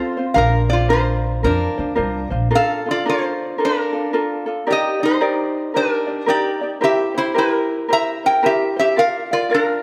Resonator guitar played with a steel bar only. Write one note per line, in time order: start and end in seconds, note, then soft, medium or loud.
0.00 0.24 F4 medium
0.00 0.22 C5 medium
0.34 0.69 A#4 medium
0.34 0.70 F5 medium
0.70 0.90 F4 medium
0.70 0.90 D5 medium
0.90 1.41 F4 medium
0.90 1.45 C5 medium
1.44 2.29 D4 medium
1.44 2.28 A#4 medium
2.55 2.85 A4 medium
2.55 2.88 F5 loud
2.91 3.07 F4 medium
2.91 3.08 D5 medium
3.09 3.57 F4 medium
3.09 3.57 C5 medium
3.65 4.46 D4 medium
3.65 4.46 A#4 medium
4.71 5.00 G4 medium
4.71 5.04 D#5 medium
5.03 5.71 D#4 medium
5.03 5.78 C5 medium
5.76 6.25 D4 medium
5.76 6.28 A#4 medium
6.29 6.69 G4 medium
6.29 6.70 D5 medium
6.84 7.14 G4 medium
6.84 7.18 E5 medium
7.18 7.35 E4 medium
7.18 7.37 C5 medium
7.38 7.87 E4 medium
7.38 7.92 A#4 medium
7.93 8.23 E5 medium
7.93 8.26 A#5 loud
8.26 8.43 A#4 medium
8.26 8.45 G5 medium
8.46 8.76 G4 medium
8.46 8.78 E5 medium
8.79 8.97 G4 medium
8.79 8.98 E5 medium
8.99 9.30 A#4 medium
8.99 9.33 F5 medium
9.33 9.50 F4 medium
9.33 9.52 D5 medium
9.54 9.83 D4 medium
9.54 9.83 A#4 medium